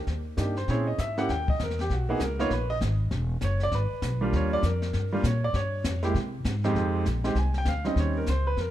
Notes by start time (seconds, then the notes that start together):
0.07 D#2, brush sweep, kick, snare
0.37 G2 A#3 D4 D#4 G4, kick, snare, hi-hat pedal
0.57 C5, snare
0.68 A#2 C4 C#4 E4 G#4 C#5, brush sweep, kick, snare
0.87 D#5
0.98 G#2 E5, kick, snare, hi-hat pedal
1.17 A#3 C#4 E4 G4 F#5, snare
1.29 D#2 G5, brush sweep, kick, snare
1.48 D#5, kick
1.60 E2 A#4, kick, snare, hi-hat pedal
1.70 snare
1.79 G4, snare
1.90 B1 F#4, brush sweep, kick, snare
2.09 A#3 B3 D#4 F#4 G#4
2.20 C#2 A#4, kick, snare, hi-hat pedal
2.39 A#3 B3 D#4 F4 C#5, snare
2.50 A#1 B4, brush sweep, kick, snare
2.70 D#5
2.81 G#1, kick, snare, hi-hat pedal
3.11 E1, brush sweep, kick, snare
3.41 F#1 C#5, kick, snare, hi-hat pedal
3.60 D5, snare
3.72 G#1 B4, brush sweep, kick, snare
3.91 muted upright bass stroke
4.02 B1, kick, snare, hi-hat pedal
4.21 G3 A#3 D4 F4
4.33 D#2 C#5, brush sweep, kick, snare
4.53 D5
4.63 F2 A#4, kick, snare, hi-hat pedal
4.82 snare
4.93 G2, brush sweep, kick, snare
5.13 G3 A#3 D4 F4
5.23 A#2 C#5, kick, snare, hi-hat pedal
5.44 D5
5.53 G2 C#5, brush sweep, kick, snare
5.84 F2, kick, snare, hi-hat pedal
6.03 G#3 A#3 E4 G4, snare
6.15 C3, brush sweep, kick, snare
6.45 G#2, kick, snare, hi-hat pedal
6.64 F2 G#3 C4 D#4 G4, snare
6.75 F2, brush sweep, kick, snare
7.05 A#1, kick, snare, hi-hat pedal
7.24 G#3 C4 D#4 G4, snare
7.35 C2 G#5, brush sweep, kick, snare
7.54 G5, snare
7.65 D2 F5, kick, snare, hi-hat pedal
7.85 G3 C4 C#4 D#4 D#5, snare
7.96 D#2 C#5, brush sweep, kick, snare
8.17 A#4
8.26 C#2 C5, kick, snare, hi-hat pedal
8.47 B4
8.57 F2 A#4, brush sweep, kick, snare